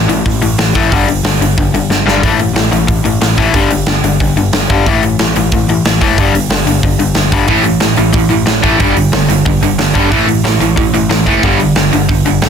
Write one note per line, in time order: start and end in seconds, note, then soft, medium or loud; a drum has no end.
0.08 0.23 A1 medium
0.08 0.23 A2 medium
0.08 0.24 E3 medium
0.08 open hi-hat medium
0.26 0.40 A1 medium
0.26 0.40 A2 medium
0.26 0.40 E3 medium
0.26 kick loud
0.26 open hi-hat medium
0.42 0.57 A1 medium
0.42 0.56 A2 medium
0.42 0.57 E3 medium
0.42 open hi-hat medium
0.58 0.73 A1 medium
0.58 0.73 A2 medium
0.58 0.73 E3 medium
0.58 snare loud
0.58 open hi-hat medium
0.75 0.89 A1 medium
0.75 0.91 A2 medium
0.75 0.91 E3 medium
0.75 0.91 A3 medium
0.75 kick medium
0.75 open hi-hat medium
0.92 1.06 G1 medium
0.92 1.07 G2 medium
0.92 1.07 D3 loud
0.92 1.07 G3 medium
0.92 kick loud
0.92 open hi-hat medium
1.08 1.22 G1 medium
1.08 1.23 G2 medium
1.08 1.23 D3 medium
1.08 open hi-hat medium
1.23 1.38 G1 medium
1.23 1.39 G2 medium
1.23 1.39 D3 medium
1.23 snare loud
1.23 open hi-hat medium
1.39 1.54 G1 medium
1.39 1.56 G2 medium
1.39 1.56 D3 medium
1.39 open hi-hat medium
1.58 1.72 G1 medium
1.58 1.72 G2 medium
1.58 1.73 D3 medium
1.58 kick loud
1.58 open hi-hat medium
1.72 1.87 G1 medium
1.72 1.89 G2 medium
1.72 1.89 D3 medium
1.72 open hi-hat medium
1.90 2.04 G1 medium
1.90 2.05 G2 medium
1.90 2.05 D3 medium
1.90 snare medium
2.06 2.20 G1 medium
2.06 2.22 G2 medium
2.06 2.22 D3 medium
2.06 2.22 G3 loud
2.06 snare medium
2.23 2.52 A1 medium
2.23 2.38 A2 medium
2.23 2.39 E3 medium
2.23 2.39 A3 medium
2.23 kick medium
2.23 open hi-hat medium
2.40 2.54 A2 medium
2.40 2.55 E3 medium
2.40 open hi-hat medium
2.53 2.69 A1 loud
2.53 2.71 A2 medium
2.53 2.71 E3 medium
2.53 snare loud
2.53 open hi-hat medium
2.71 2.86 A1 medium
2.71 2.86 A2 medium
2.71 2.87 E3 medium
2.71 open hi-hat medium
2.87 3.02 A1 medium
2.87 3.03 A2 medium
2.87 3.03 E3 medium
2.87 kick loud
2.87 open hi-hat medium
3.03 3.18 A1 medium
3.03 3.19 A2 medium
3.03 3.20 E3 medium
3.03 open hi-hat medium
3.21 3.35 A1 medium
3.21 3.36 A2 medium
3.21 3.36 E3 medium
3.21 snare loud
3.21 open hi-hat medium
3.38 3.52 A1 medium
3.38 3.53 A2 medium
3.38 3.53 E3 medium
3.38 3.54 A3 medium
3.38 kick medium
3.38 open hi-hat medium
3.54 3.69 G1 medium
3.54 3.70 G2 medium
3.54 3.70 D3 medium
3.54 3.70 G3 medium
3.54 kick medium
3.54 open hi-hat medium
3.70 3.85 G1 medium
3.70 3.86 G2 medium
3.70 3.86 D3 medium
3.70 open hi-hat medium
3.86 4.01 G1 loud
3.86 4.02 G2 medium
3.86 4.02 D3 medium
3.86 snare loud
3.86 open hi-hat medium
4.02 4.17 G1 medium
4.02 4.19 G2 medium
4.02 4.19 D3 medium
4.02 open hi-hat medium
4.20 4.35 G1 medium
4.20 4.35 G2 medium
4.20 4.35 D3 medium
4.20 kick loud
4.20 open hi-hat medium
4.36 4.50 G1 medium
4.36 4.51 G2 medium
4.36 4.52 D3 medium
4.36 open hi-hat medium
4.53 4.67 G1 medium
4.53 4.68 G2 medium
4.53 4.68 D3 medium
4.53 snare loud
4.53 open hi-hat medium
4.70 4.84 G1 medium
4.70 4.85 G2 medium
4.70 4.85 D3 loud
4.70 4.86 G3 medium
4.70 kick medium
4.70 open hi-hat medium
4.86 5.15 A1 medium
4.86 5.02 A2 medium
4.86 5.02 E3 medium
4.86 5.02 A3 medium
4.86 kick medium
4.86 open hi-hat medium
5.03 5.18 A2 medium
5.03 5.18 E3 medium
5.03 open hi-hat medium
5.19 5.33 A1 medium
5.19 5.34 A2 medium
5.19 5.34 E3 medium
5.19 snare loud
5.19 open hi-hat medium
5.35 5.50 A1 medium
5.35 5.50 A2 medium
5.35 5.51 E3 medium
5.35 open hi-hat medium
5.52 5.66 A1 medium
5.52 5.67 A2 medium
5.52 5.67 E3 medium
5.52 kick loud
5.52 open hi-hat medium
5.67 5.82 A1 medium
5.67 5.83 A2 medium
5.67 5.84 E3 medium
5.67 open hi-hat medium
5.85 5.99 A1 medium
5.85 6.00 A2 medium
5.85 6.00 E3 medium
5.85 snare loud
5.85 open hi-hat medium
6.01 6.16 F#1 medium
6.01 6.16 A2 medium
6.01 6.17 E3 loud
6.01 6.17 A3 loud
6.01 kick medium
6.01 open hi-hat medium
6.18 6.32 G1 medium
6.18 6.33 G2 medium
6.18 6.33 D3 medium
6.18 6.34 G3 loud
6.18 kick medium
6.18 open hi-hat medium
6.33 6.48 G1 medium
6.33 6.49 G2 medium
6.33 6.49 D3 medium
6.33 open hi-hat medium
6.49 6.64 G1 medium
6.49 6.66 G2 medium
6.49 6.66 D3 medium
6.49 snare loud
6.49 open hi-hat medium
6.66 6.80 G1 medium
6.66 6.81 G2 medium
6.66 6.82 D3 medium
6.66 open hi-hat medium
6.83 6.97 G1 medium
6.83 6.98 G2 medium
6.83 6.98 D3 medium
6.83 kick loud
6.83 open hi-hat medium
6.99 7.13 G1 medium
6.99 7.14 G2 medium
6.99 7.14 D3 medium
6.99 open hi-hat medium
7.14 7.29 G1 medium
7.14 7.30 G2 medium
7.14 7.31 D3 medium
7.14 snare medium
7.14 open hi-hat medium
7.32 7.46 G1 medium
7.32 7.47 G2 medium
7.32 7.47 D3 medium
7.32 7.48 G3 medium
7.32 kick medium
7.32 open hi-hat medium
7.48 7.77 A1 medium
7.48 7.63 A2 medium
7.48 7.64 E3 medium
7.48 7.64 A3 medium
7.48 kick loud
7.48 open hi-hat medium
7.64 7.79 A2 medium
7.64 7.80 E3 medium
7.64 open hi-hat medium
7.80 7.96 A1 medium
7.80 7.96 A2 medium
7.80 7.96 E3 medium
7.80 snare loud
7.80 open hi-hat medium
7.96 8.12 A1 medium
7.96 8.12 A2 medium
7.96 8.11 E3 medium
7.96 open hi-hat medium
8.13 8.28 A1 medium
8.13 8.28 A2 medium
8.13 8.28 E3 medium
8.13 kick loud
8.13 open hi-hat medium
8.29 8.45 A1 medium
8.29 8.45 A2 medium
8.29 8.45 E3 medium
8.29 open hi-hat soft
8.46 8.62 A1 medium
8.46 8.61 A2 medium
8.46 8.61 E3 medium
8.46 snare loud
8.46 open hi-hat medium
8.62 8.78 A1 medium
8.62 8.79 A2 medium
8.62 8.78 E3 medium
8.62 8.79 A3 loud
8.62 kick medium
8.62 open hi-hat medium
8.79 8.94 G1 medium
8.79 8.94 G2 medium
8.79 8.94 D3 medium
8.79 8.95 G3 medium
8.79 kick loud
8.79 open hi-hat medium
8.95 9.11 G1 medium
8.95 9.11 G2 medium
8.95 9.11 D3 medium
8.95 open hi-hat medium
9.12 9.27 G1 medium
9.12 9.27 G2 medium
9.12 9.28 D3 medium
9.12 snare loud
9.12 open hi-hat medium
9.29 9.43 G1 medium
9.29 9.44 G2 medium
9.29 9.44 D3 medium
9.29 open hi-hat medium
9.45 9.60 G1 medium
9.45 9.60 G2 medium
9.45 9.60 D3 medium
9.45 kick loud
9.45 open hi-hat medium
9.61 9.76 G1 medium
9.61 9.77 G2 medium
9.61 9.77 D3 medium
9.61 open hi-hat medium
9.78 9.93 G1 medium
9.78 9.93 G2 medium
9.78 9.93 D3 medium
9.78 snare loud
9.78 open hi-hat medium
9.94 10.09 G1 medium
9.94 10.10 G2 medium
9.94 10.10 D3 medium
9.94 10.11 G3 medium
9.94 kick medium
10.11 10.40 A1 medium
10.11 10.26 A2 medium
10.11 10.26 E3 medium
10.11 10.27 A3 loud
10.11 kick loud
10.11 open hi-hat medium
10.27 10.42 A2 medium
10.27 10.42 E3 medium
10.27 open hi-hat medium
10.43 10.58 A1 medium
10.43 10.59 A2 medium
10.43 10.59 E3 medium
10.43 snare loud
10.43 open hi-hat medium
10.60 10.75 A1 medium
10.60 10.75 A2 medium
10.60 10.75 E3 medium
10.60 open hi-hat medium
10.76 10.91 A1 medium
10.76 10.92 A2 medium
10.76 10.92 E3 medium
10.76 kick loud
10.76 open hi-hat medium
10.93 11.08 A1 medium
10.93 11.08 A2 medium
10.93 11.09 E3 medium
10.93 open hi-hat medium
11.10 11.25 A1 medium
11.10 11.25 A2 medium
11.10 11.25 E3 medium
11.10 snare loud
11.10 open hi-hat medium
11.26 11.41 F#1 medium
11.26 11.42 A2 medium
11.26 11.42 E3 medium
11.26 11.42 A3 medium
11.26 kick medium
11.26 open hi-hat medium
11.43 11.57 G1 loud
11.43 11.59 G2 medium
11.43 11.59 D3 medium
11.43 11.59 G3 loud
11.43 kick loud
11.43 open hi-hat medium
11.59 11.74 G1 medium
11.59 11.74 G2 medium
11.59 11.75 D3 medium
11.59 open hi-hat medium
11.75 11.90 G1 medium
11.75 11.91 G2 medium
11.75 11.91 D3 medium
11.75 snare loud
11.75 open hi-hat medium
11.92 12.07 G1 medium
11.92 12.07 G2 medium
11.92 12.07 D3 medium
11.92 open hi-hat medium
12.09 12.23 G1 medium
12.09 12.24 G2 medium
12.09 12.24 D3 medium
12.09 kick loud
12.09 open hi-hat medium
12.25 12.39 G1 medium
12.25 12.40 G2 medium
12.25 12.40 D3 medium
12.25 open hi-hat medium
12.42 12.49 G1 medium
12.42 12.49 G2 medium
12.42 12.49 D3 medium
12.42 snare loud
12.42 open hi-hat medium